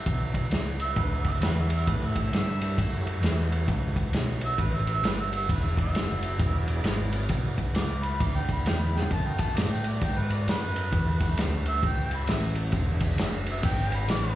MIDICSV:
0, 0, Header, 1, 5, 480
1, 0, Start_track
1, 0, Tempo, 452148
1, 74, Time_signature, 4, 2, 24, 8
1, 15235, End_track
2, 0, Start_track
2, 0, Title_t, "Harmonica"
2, 0, Program_c, 0, 22
2, 0, Note_on_c, 0, 76, 100
2, 534, Note_off_c, 0, 76, 0
2, 865, Note_on_c, 0, 76, 107
2, 1047, Note_on_c, 0, 71, 94
2, 1063, Note_off_c, 0, 76, 0
2, 1207, Note_on_c, 0, 76, 83
2, 1223, Note_off_c, 0, 71, 0
2, 1345, Note_off_c, 0, 76, 0
2, 1352, Note_on_c, 0, 76, 80
2, 1508, Note_off_c, 0, 76, 0
2, 1518, Note_on_c, 0, 71, 83
2, 1671, Note_off_c, 0, 71, 0
2, 1699, Note_on_c, 0, 76, 70
2, 1843, Note_off_c, 0, 76, 0
2, 1872, Note_on_c, 0, 76, 93
2, 1984, Note_on_c, 0, 71, 82
2, 2000, Note_off_c, 0, 76, 0
2, 2186, Note_on_c, 0, 76, 77
2, 2202, Note_off_c, 0, 71, 0
2, 2326, Note_off_c, 0, 76, 0
2, 2337, Note_on_c, 0, 76, 96
2, 3257, Note_off_c, 0, 76, 0
2, 4726, Note_on_c, 0, 76, 106
2, 4863, Note_off_c, 0, 76, 0
2, 4870, Note_on_c, 0, 71, 102
2, 5047, Note_on_c, 0, 76, 90
2, 5063, Note_off_c, 0, 71, 0
2, 5195, Note_off_c, 0, 76, 0
2, 5238, Note_on_c, 0, 76, 92
2, 5388, Note_on_c, 0, 71, 96
2, 5404, Note_off_c, 0, 76, 0
2, 5518, Note_off_c, 0, 71, 0
2, 5524, Note_on_c, 0, 76, 85
2, 5673, Note_off_c, 0, 76, 0
2, 5695, Note_on_c, 0, 76, 100
2, 5833, Note_off_c, 0, 76, 0
2, 5839, Note_on_c, 0, 71, 83
2, 5984, Note_on_c, 0, 76, 83
2, 6000, Note_off_c, 0, 71, 0
2, 6143, Note_off_c, 0, 76, 0
2, 6180, Note_on_c, 0, 76, 98
2, 7098, Note_off_c, 0, 76, 0
2, 8235, Note_on_c, 0, 86, 107
2, 8538, Note_on_c, 0, 83, 94
2, 8554, Note_off_c, 0, 86, 0
2, 8730, Note_on_c, 0, 86, 110
2, 8745, Note_off_c, 0, 83, 0
2, 8876, Note_on_c, 0, 79, 91
2, 8892, Note_off_c, 0, 86, 0
2, 9030, Note_off_c, 0, 79, 0
2, 9046, Note_on_c, 0, 83, 78
2, 9195, Note_off_c, 0, 83, 0
2, 9201, Note_on_c, 0, 79, 81
2, 9338, Note_on_c, 0, 83, 74
2, 9354, Note_off_c, 0, 79, 0
2, 9517, Note_on_c, 0, 79, 84
2, 9533, Note_off_c, 0, 83, 0
2, 9671, Note_off_c, 0, 79, 0
2, 9692, Note_on_c, 0, 81, 99
2, 9828, Note_on_c, 0, 79, 87
2, 9844, Note_off_c, 0, 81, 0
2, 9984, Note_on_c, 0, 81, 99
2, 10000, Note_off_c, 0, 79, 0
2, 10160, Note_on_c, 0, 74, 96
2, 10176, Note_off_c, 0, 81, 0
2, 10323, Note_on_c, 0, 79, 85
2, 10339, Note_off_c, 0, 74, 0
2, 10494, Note_on_c, 0, 74, 97
2, 10510, Note_off_c, 0, 79, 0
2, 10658, Note_on_c, 0, 79, 99
2, 10674, Note_off_c, 0, 74, 0
2, 10814, Note_on_c, 0, 71, 94
2, 10829, Note_off_c, 0, 79, 0
2, 10977, Note_on_c, 0, 74, 85
2, 10993, Note_off_c, 0, 71, 0
2, 11122, Note_off_c, 0, 74, 0
2, 11141, Note_on_c, 0, 71, 112
2, 12062, Note_off_c, 0, 71, 0
2, 12403, Note_on_c, 0, 76, 98
2, 12556, Note_off_c, 0, 76, 0
2, 12588, Note_on_c, 0, 79, 98
2, 12913, Note_on_c, 0, 83, 90
2, 12929, Note_off_c, 0, 79, 0
2, 13047, Note_on_c, 0, 76, 103
2, 13062, Note_off_c, 0, 83, 0
2, 13333, Note_off_c, 0, 76, 0
2, 14338, Note_on_c, 0, 76, 94
2, 14476, Note_off_c, 0, 76, 0
2, 14482, Note_on_c, 0, 79, 97
2, 14819, Note_on_c, 0, 83, 94
2, 14834, Note_off_c, 0, 79, 0
2, 14964, Note_off_c, 0, 83, 0
2, 14972, Note_on_c, 0, 74, 114
2, 15235, Note_off_c, 0, 74, 0
2, 15235, End_track
3, 0, Start_track
3, 0, Title_t, "Tonewheel organ"
3, 0, Program_c, 1, 16
3, 63, Note_on_c, 1, 74, 66
3, 65, Note_on_c, 1, 59, 61
3, 66, Note_on_c, 1, 64, 58
3, 66, Note_on_c, 1, 68, 66
3, 1969, Note_off_c, 1, 74, 0
3, 1970, Note_off_c, 1, 59, 0
3, 1971, Note_off_c, 1, 64, 0
3, 1971, Note_off_c, 1, 68, 0
3, 2011, Note_on_c, 1, 67, 66
3, 2012, Note_on_c, 1, 73, 67
3, 2026, Note_on_c, 1, 57, 63
3, 2028, Note_on_c, 1, 64, 65
3, 5802, Note_off_c, 1, 67, 0
3, 5802, Note_off_c, 1, 73, 0
3, 5809, Note_off_c, 1, 64, 0
3, 5810, Note_off_c, 1, 57, 0
3, 5818, Note_on_c, 1, 68, 68
3, 5822, Note_on_c, 1, 64, 69
3, 5823, Note_on_c, 1, 74, 64
3, 5837, Note_on_c, 1, 59, 69
3, 9629, Note_off_c, 1, 68, 0
3, 9630, Note_off_c, 1, 59, 0
3, 9631, Note_off_c, 1, 64, 0
3, 9631, Note_off_c, 1, 74, 0
3, 9643, Note_on_c, 1, 59, 66
3, 9648, Note_on_c, 1, 66, 61
3, 9649, Note_on_c, 1, 69, 62
3, 9656, Note_on_c, 1, 75, 67
3, 11562, Note_off_c, 1, 59, 0
3, 11565, Note_off_c, 1, 66, 0
3, 11565, Note_off_c, 1, 69, 0
3, 11569, Note_off_c, 1, 75, 0
3, 11604, Note_on_c, 1, 69, 62
3, 11606, Note_on_c, 1, 76, 71
3, 11608, Note_on_c, 1, 67, 63
3, 11610, Note_on_c, 1, 61, 64
3, 13494, Note_off_c, 1, 69, 0
3, 13504, Note_off_c, 1, 76, 0
3, 13505, Note_off_c, 1, 67, 0
3, 13506, Note_off_c, 1, 61, 0
3, 13506, Note_on_c, 1, 69, 62
3, 13506, Note_on_c, 1, 77, 60
3, 13519, Note_on_c, 1, 72, 67
3, 13529, Note_on_c, 1, 63, 57
3, 13673, Note_off_c, 1, 69, 0
3, 13673, Note_off_c, 1, 77, 0
3, 13679, Note_off_c, 1, 72, 0
3, 13683, Note_on_c, 1, 62, 77
3, 13684, Note_off_c, 1, 63, 0
3, 13694, Note_on_c, 1, 76, 80
3, 13699, Note_on_c, 1, 68, 78
3, 13699, Note_on_c, 1, 71, 75
3, 15235, Note_off_c, 1, 62, 0
3, 15235, Note_off_c, 1, 68, 0
3, 15235, Note_off_c, 1, 71, 0
3, 15235, Note_off_c, 1, 76, 0
3, 15235, End_track
4, 0, Start_track
4, 0, Title_t, "Picked electric bass"
4, 0, Program_c, 2, 34
4, 70, Note_on_c, 2, 35, 78
4, 538, Note_off_c, 2, 35, 0
4, 551, Note_on_c, 2, 37, 84
4, 1018, Note_off_c, 2, 37, 0
4, 1025, Note_on_c, 2, 38, 81
4, 1482, Note_off_c, 2, 38, 0
4, 1488, Note_on_c, 2, 40, 88
4, 1967, Note_off_c, 2, 40, 0
4, 1991, Note_on_c, 2, 45, 90
4, 2458, Note_off_c, 2, 45, 0
4, 2469, Note_on_c, 2, 43, 87
4, 2936, Note_off_c, 2, 43, 0
4, 2946, Note_on_c, 2, 42, 88
4, 3403, Note_off_c, 2, 42, 0
4, 3410, Note_on_c, 2, 40, 84
4, 3886, Note_off_c, 2, 40, 0
4, 3907, Note_on_c, 2, 37, 90
4, 4375, Note_off_c, 2, 37, 0
4, 4391, Note_on_c, 2, 35, 89
4, 4857, Note_off_c, 2, 35, 0
4, 4866, Note_on_c, 2, 33, 92
4, 5322, Note_off_c, 2, 33, 0
4, 5329, Note_on_c, 2, 31, 94
4, 5805, Note_off_c, 2, 31, 0
4, 5827, Note_on_c, 2, 28, 90
4, 6295, Note_off_c, 2, 28, 0
4, 6305, Note_on_c, 2, 30, 99
4, 6774, Note_off_c, 2, 30, 0
4, 6780, Note_on_c, 2, 28, 85
4, 7246, Note_off_c, 2, 28, 0
4, 7252, Note_on_c, 2, 32, 89
4, 7728, Note_off_c, 2, 32, 0
4, 7741, Note_on_c, 2, 35, 81
4, 8025, Note_off_c, 2, 35, 0
4, 8216, Note_on_c, 2, 37, 97
4, 8690, Note_off_c, 2, 37, 0
4, 8709, Note_on_c, 2, 38, 87
4, 9177, Note_off_c, 2, 38, 0
4, 9199, Note_on_c, 2, 40, 85
4, 9663, Note_off_c, 2, 40, 0
4, 9672, Note_on_c, 2, 42, 84
4, 10139, Note_off_c, 2, 42, 0
4, 10158, Note_on_c, 2, 45, 84
4, 10623, Note_off_c, 2, 45, 0
4, 10635, Note_on_c, 2, 44, 82
4, 11102, Note_off_c, 2, 44, 0
4, 11120, Note_on_c, 2, 42, 92
4, 11585, Note_off_c, 2, 42, 0
4, 11593, Note_on_c, 2, 40, 84
4, 12061, Note_off_c, 2, 40, 0
4, 12075, Note_on_c, 2, 38, 92
4, 12542, Note_off_c, 2, 38, 0
4, 12562, Note_on_c, 2, 37, 79
4, 13023, Note_off_c, 2, 37, 0
4, 13030, Note_on_c, 2, 33, 89
4, 13500, Note_off_c, 2, 33, 0
4, 13516, Note_on_c, 2, 28, 88
4, 13983, Note_off_c, 2, 28, 0
4, 13994, Note_on_c, 2, 30, 97
4, 14462, Note_off_c, 2, 30, 0
4, 14467, Note_on_c, 2, 32, 90
4, 14938, Note_off_c, 2, 32, 0
4, 14949, Note_on_c, 2, 33, 96
4, 15235, Note_off_c, 2, 33, 0
4, 15235, End_track
5, 0, Start_track
5, 0, Title_t, "Drums"
5, 66, Note_on_c, 9, 36, 106
5, 70, Note_on_c, 9, 51, 85
5, 173, Note_off_c, 9, 36, 0
5, 176, Note_off_c, 9, 51, 0
5, 363, Note_on_c, 9, 36, 82
5, 365, Note_on_c, 9, 51, 61
5, 470, Note_off_c, 9, 36, 0
5, 471, Note_off_c, 9, 51, 0
5, 542, Note_on_c, 9, 51, 72
5, 558, Note_on_c, 9, 38, 99
5, 648, Note_off_c, 9, 51, 0
5, 664, Note_off_c, 9, 38, 0
5, 845, Note_on_c, 9, 51, 67
5, 951, Note_off_c, 9, 51, 0
5, 1021, Note_on_c, 9, 51, 85
5, 1025, Note_on_c, 9, 36, 115
5, 1127, Note_off_c, 9, 51, 0
5, 1131, Note_off_c, 9, 36, 0
5, 1322, Note_on_c, 9, 51, 72
5, 1325, Note_on_c, 9, 36, 76
5, 1428, Note_off_c, 9, 51, 0
5, 1432, Note_off_c, 9, 36, 0
5, 1504, Note_on_c, 9, 51, 88
5, 1520, Note_on_c, 9, 38, 105
5, 1610, Note_off_c, 9, 51, 0
5, 1626, Note_off_c, 9, 38, 0
5, 1803, Note_on_c, 9, 51, 69
5, 1909, Note_off_c, 9, 51, 0
5, 1988, Note_on_c, 9, 51, 84
5, 1990, Note_on_c, 9, 36, 99
5, 2094, Note_off_c, 9, 51, 0
5, 2096, Note_off_c, 9, 36, 0
5, 2289, Note_on_c, 9, 36, 83
5, 2289, Note_on_c, 9, 51, 77
5, 2395, Note_off_c, 9, 36, 0
5, 2396, Note_off_c, 9, 51, 0
5, 2474, Note_on_c, 9, 51, 75
5, 2490, Note_on_c, 9, 38, 103
5, 2580, Note_off_c, 9, 51, 0
5, 2596, Note_off_c, 9, 38, 0
5, 2776, Note_on_c, 9, 51, 67
5, 2882, Note_off_c, 9, 51, 0
5, 2953, Note_on_c, 9, 36, 99
5, 2953, Note_on_c, 9, 51, 85
5, 3059, Note_off_c, 9, 36, 0
5, 3059, Note_off_c, 9, 51, 0
5, 3257, Note_on_c, 9, 51, 61
5, 3363, Note_off_c, 9, 51, 0
5, 3426, Note_on_c, 9, 51, 82
5, 3442, Note_on_c, 9, 38, 99
5, 3532, Note_off_c, 9, 51, 0
5, 3548, Note_off_c, 9, 38, 0
5, 3607, Note_on_c, 9, 38, 31
5, 3713, Note_off_c, 9, 38, 0
5, 3737, Note_on_c, 9, 51, 57
5, 3844, Note_off_c, 9, 51, 0
5, 3906, Note_on_c, 9, 51, 76
5, 3907, Note_on_c, 9, 36, 110
5, 4012, Note_off_c, 9, 51, 0
5, 4014, Note_off_c, 9, 36, 0
5, 4206, Note_on_c, 9, 36, 87
5, 4208, Note_on_c, 9, 51, 63
5, 4312, Note_off_c, 9, 36, 0
5, 4314, Note_off_c, 9, 51, 0
5, 4385, Note_on_c, 9, 51, 82
5, 4401, Note_on_c, 9, 38, 100
5, 4491, Note_off_c, 9, 51, 0
5, 4507, Note_off_c, 9, 38, 0
5, 4683, Note_on_c, 9, 51, 65
5, 4789, Note_off_c, 9, 51, 0
5, 4866, Note_on_c, 9, 36, 105
5, 4866, Note_on_c, 9, 51, 84
5, 4972, Note_off_c, 9, 36, 0
5, 4972, Note_off_c, 9, 51, 0
5, 5172, Note_on_c, 9, 51, 70
5, 5278, Note_off_c, 9, 51, 0
5, 5347, Note_on_c, 9, 51, 85
5, 5363, Note_on_c, 9, 38, 116
5, 5454, Note_off_c, 9, 51, 0
5, 5470, Note_off_c, 9, 38, 0
5, 5655, Note_on_c, 9, 51, 65
5, 5761, Note_off_c, 9, 51, 0
5, 5831, Note_on_c, 9, 36, 105
5, 5833, Note_on_c, 9, 51, 92
5, 5937, Note_off_c, 9, 36, 0
5, 5940, Note_off_c, 9, 51, 0
5, 6130, Note_on_c, 9, 36, 92
5, 6137, Note_on_c, 9, 51, 69
5, 6236, Note_off_c, 9, 36, 0
5, 6243, Note_off_c, 9, 51, 0
5, 6314, Note_on_c, 9, 51, 87
5, 6330, Note_on_c, 9, 38, 101
5, 6420, Note_off_c, 9, 51, 0
5, 6436, Note_off_c, 9, 38, 0
5, 6609, Note_on_c, 9, 51, 70
5, 6715, Note_off_c, 9, 51, 0
5, 6790, Note_on_c, 9, 36, 114
5, 6790, Note_on_c, 9, 51, 92
5, 6896, Note_off_c, 9, 36, 0
5, 6896, Note_off_c, 9, 51, 0
5, 7086, Note_on_c, 9, 51, 62
5, 7193, Note_off_c, 9, 51, 0
5, 7262, Note_on_c, 9, 51, 93
5, 7277, Note_on_c, 9, 38, 105
5, 7368, Note_off_c, 9, 51, 0
5, 7384, Note_off_c, 9, 38, 0
5, 7565, Note_on_c, 9, 51, 65
5, 7671, Note_off_c, 9, 51, 0
5, 7738, Note_on_c, 9, 51, 79
5, 7746, Note_on_c, 9, 36, 98
5, 7844, Note_off_c, 9, 51, 0
5, 7852, Note_off_c, 9, 36, 0
5, 8044, Note_on_c, 9, 51, 68
5, 8046, Note_on_c, 9, 36, 90
5, 8151, Note_off_c, 9, 51, 0
5, 8152, Note_off_c, 9, 36, 0
5, 8224, Note_on_c, 9, 51, 75
5, 8239, Note_on_c, 9, 38, 99
5, 8330, Note_off_c, 9, 51, 0
5, 8346, Note_off_c, 9, 38, 0
5, 8526, Note_on_c, 9, 51, 58
5, 8632, Note_off_c, 9, 51, 0
5, 8709, Note_on_c, 9, 51, 81
5, 8710, Note_on_c, 9, 36, 107
5, 8815, Note_off_c, 9, 51, 0
5, 8816, Note_off_c, 9, 36, 0
5, 9011, Note_on_c, 9, 36, 75
5, 9014, Note_on_c, 9, 51, 64
5, 9117, Note_off_c, 9, 36, 0
5, 9120, Note_off_c, 9, 51, 0
5, 9192, Note_on_c, 9, 51, 79
5, 9208, Note_on_c, 9, 38, 109
5, 9298, Note_off_c, 9, 51, 0
5, 9314, Note_off_c, 9, 38, 0
5, 9516, Note_on_c, 9, 38, 54
5, 9580, Note_on_c, 9, 43, 80
5, 9622, Note_off_c, 9, 38, 0
5, 9666, Note_on_c, 9, 51, 82
5, 9671, Note_on_c, 9, 36, 107
5, 9687, Note_off_c, 9, 43, 0
5, 9773, Note_off_c, 9, 51, 0
5, 9777, Note_off_c, 9, 36, 0
5, 9962, Note_on_c, 9, 51, 75
5, 9970, Note_on_c, 9, 36, 90
5, 10068, Note_off_c, 9, 51, 0
5, 10076, Note_off_c, 9, 36, 0
5, 10155, Note_on_c, 9, 51, 95
5, 10171, Note_on_c, 9, 38, 112
5, 10262, Note_off_c, 9, 51, 0
5, 10278, Note_off_c, 9, 38, 0
5, 10448, Note_on_c, 9, 51, 72
5, 10554, Note_off_c, 9, 51, 0
5, 10631, Note_on_c, 9, 51, 91
5, 10634, Note_on_c, 9, 36, 115
5, 10737, Note_off_c, 9, 51, 0
5, 10740, Note_off_c, 9, 36, 0
5, 10939, Note_on_c, 9, 51, 67
5, 11045, Note_off_c, 9, 51, 0
5, 11123, Note_on_c, 9, 51, 82
5, 11139, Note_on_c, 9, 38, 102
5, 11229, Note_off_c, 9, 51, 0
5, 11245, Note_off_c, 9, 38, 0
5, 11422, Note_on_c, 9, 51, 64
5, 11528, Note_off_c, 9, 51, 0
5, 11598, Note_on_c, 9, 51, 79
5, 11599, Note_on_c, 9, 36, 104
5, 11704, Note_off_c, 9, 51, 0
5, 11705, Note_off_c, 9, 36, 0
5, 11893, Note_on_c, 9, 51, 73
5, 11897, Note_on_c, 9, 36, 87
5, 11999, Note_off_c, 9, 51, 0
5, 12003, Note_off_c, 9, 36, 0
5, 12075, Note_on_c, 9, 51, 90
5, 12091, Note_on_c, 9, 38, 94
5, 12181, Note_off_c, 9, 51, 0
5, 12197, Note_off_c, 9, 38, 0
5, 12375, Note_on_c, 9, 51, 66
5, 12481, Note_off_c, 9, 51, 0
5, 12557, Note_on_c, 9, 51, 82
5, 12558, Note_on_c, 9, 36, 112
5, 12663, Note_off_c, 9, 51, 0
5, 12664, Note_off_c, 9, 36, 0
5, 12855, Note_on_c, 9, 51, 64
5, 12961, Note_off_c, 9, 51, 0
5, 13029, Note_on_c, 9, 51, 88
5, 13045, Note_on_c, 9, 38, 104
5, 13135, Note_off_c, 9, 51, 0
5, 13151, Note_off_c, 9, 38, 0
5, 13325, Note_on_c, 9, 51, 64
5, 13431, Note_off_c, 9, 51, 0
5, 13504, Note_on_c, 9, 51, 82
5, 13511, Note_on_c, 9, 36, 98
5, 13610, Note_off_c, 9, 51, 0
5, 13617, Note_off_c, 9, 36, 0
5, 13805, Note_on_c, 9, 51, 73
5, 13812, Note_on_c, 9, 36, 85
5, 13912, Note_off_c, 9, 51, 0
5, 13919, Note_off_c, 9, 36, 0
5, 13992, Note_on_c, 9, 51, 85
5, 14008, Note_on_c, 9, 38, 97
5, 14098, Note_off_c, 9, 51, 0
5, 14114, Note_off_c, 9, 38, 0
5, 14294, Note_on_c, 9, 51, 69
5, 14400, Note_off_c, 9, 51, 0
5, 14470, Note_on_c, 9, 51, 105
5, 14474, Note_on_c, 9, 36, 119
5, 14576, Note_off_c, 9, 51, 0
5, 14580, Note_off_c, 9, 36, 0
5, 14776, Note_on_c, 9, 51, 68
5, 14882, Note_off_c, 9, 51, 0
5, 14952, Note_on_c, 9, 51, 93
5, 14968, Note_on_c, 9, 38, 106
5, 15058, Note_off_c, 9, 51, 0
5, 15074, Note_off_c, 9, 38, 0
5, 15235, End_track
0, 0, End_of_file